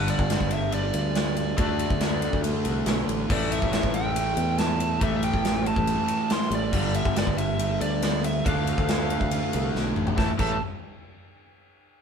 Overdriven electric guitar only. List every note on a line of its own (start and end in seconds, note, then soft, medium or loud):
0.00 1.56 G2 medium
0.00 1.56 D3 medium
0.00 1.58 G3 loud
1.57 3.28 D3 medium
1.57 3.31 A3 medium
1.57 3.30 D4 loud
3.29 4.99 A2 medium
3.29 5.01 E3 medium
3.29 5.01 A3 medium
5.00 6.71 A2 loud
5.00 6.72 E3 loud
5.00 6.73 A3 loud
6.72 8.43 G2 medium
6.72 8.43 D3 loud
6.72 8.45 G3 loud
8.45 10.16 D3 loud
8.45 10.16 A3 loud
8.45 10.17 D4 loud
10.16 10.30 A2 medium
10.16 10.30 E3 loud
10.16 10.30 A3 loud
10.38 10.56 A2 loud
10.38 10.56 E3 loud
10.38 10.56 A3 loud